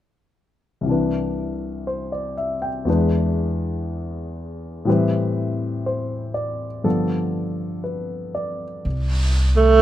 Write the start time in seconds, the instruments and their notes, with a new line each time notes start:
0.81 grand piano C2 C3
0.86 grand piano E3 D4
0.91 grand piano B4
1.87 grand piano C5
2.12 grand piano D5
2.37 grand piano E5
2.62 grand piano G5
2.85 grand piano E2 E3 G#3 D4
2.90 grand piano B4
4.85 grand piano A2 E3 G3 C4
4.90 grand piano B4
5.86 grand piano C5
6.34 grand piano D5
6.84 grand piano G2 D3 F3 B3 A4
7.84 grand piano B4
8.35 grand piano D5
8.85 upright bass C2, brush sweep
9.56 tenor saxophone A3